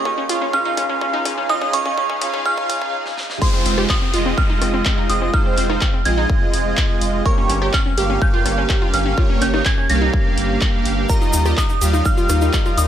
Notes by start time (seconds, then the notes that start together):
Already playing: C#2 C#3 D#4 G#4 D#5 F5 C#6 D#6
0.05 C#4, kick
0.18 C#4
0.29 C#3 C#4 F4 F5, kick, open hi-hat
0.42 C#4
0.53 C#4 F6, kick
0.65 D#4
0.77 C#4, kick, open hi-hat
0.89 C#4
1.01 C#4, kick
1.13 D#4
1.25 C#4, kick, open hi-hat
1.38 C#4
1.49 C#3 C#4 D#4 F4 D#5 D#6, kick
1.62 C#4, kick
1.73 C#4 C#6, kick, open hi-hat
1.86 C#3 C#4 F4 D#5, kick
1.98 C#4, kick
2.10 C#4, kick
2.21 C#3 C#4 F4 F5, kick, open hi-hat
2.34 C#4, kick
2.46 F6, kick
2.58 kick
2.70 kick, open hi-hat
2.82 kick
3.06 snare
3.18 snare
3.30 snare
3.42 G#3 C4 F4 G#4 C5 C6, kick, crash, downlifter
3.54 C4
3.66 F1 C4, open hi-hat
3.78 G#3 F4 G4 C5, cross-stick
3.89 C4 D#6, kick, clap
4.02 C4
4.14 F1 G#3 F4 D#5, open hi-hat
4.26 C4
4.38 C4 F6, kick
4.50 D#4
4.62 F1 C4, cross-stick, open hi-hat
4.74 C4
4.85 C4, kick, clap
4.98 D#4
5.10 F1 C4 D#6, open hi-hat
5.22 C4
5.34 G#3 D#4 F4 C5 F6, kick
5.46 C4
5.57 F1 C4, clap, open hi-hat
5.70 G#3 D#4 F4 C5, cross-stick
5.81 C4, kick, clap
5.94 C4
6.05 A#1 G#3 C4 F4 D#5 G#6, open hi-hat
6.18 D#4
6.30 kick
6.54 F1, open hi-hat
6.77 kick, clap
7.01 F1, open hi-hat
7.26 G2 A#3 C#4 G4 A#4 C#5 C#6, kick
7.38 C#4
7.50 G1 C#4, open hi-hat
7.62 G2 A#3 G4 C#5, cross-stick
7.73 C#4 F6, kick, clap
7.86 C#4
7.97 G1 G2 A#3 G4 F5, open hi-hat
8.10 C#4
8.22 C#4 G6, kick
8.34 F4
8.46 G1 C#4, cross-stick, open hi-hat
8.58 C#4
8.69 C#4, kick, clap
8.82 F4
8.93 G1 C#4 F6, open hi-hat
9.06 C#4
9.18 G2 A#3 F4 G4 C#5, kick
9.30 C#4
9.41 G1 C#4 G6, clap, open hi-hat
9.54 G2 A#3 D#4 G4 C#5, cross-stick
9.65 C#4 G#6, kick, clap
9.78 C#4
9.89 C2 G2 A#3 C#4 G4 F5 A#6, open hi-hat
10.02 D#4
10.14 kick
10.37 G1, open hi-hat
10.61 kick, clap
10.85 G1, open hi-hat
11.09 D#3 G3 D#4 F4 A#4 D#5 A#5 D#6, kick, shaker
11.21 D#4, shaker
11.33 D#2 D#4, open hi-hat, shaker
11.45 G3 F4 G4 D#5, cross-stick, shaker
11.57 D#4 D#6, kick, clap, shaker
11.69 D#4, shaker
11.81 D#2 G3 F4 G4 F5, open hi-hat, shaker
11.93 D#4, shaker
12.05 D#4 F6, kick, shaker
12.17 F4, shaker
12.29 D#2 D#4, cross-stick, open hi-hat, shaker
12.41 D#4, shaker
12.53 D#4, kick, clap, shaker
12.66 F4, shaker
12.77 D#2 D#4 D#6, open hi-hat, shaker